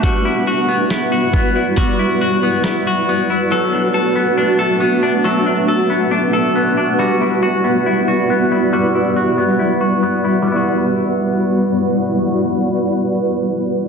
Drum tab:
HH |x-x-x-x-|--------|--------|--------|
SD |--o---o-|--------|--------|--------|
BD |o--oo---|--------|--------|--------|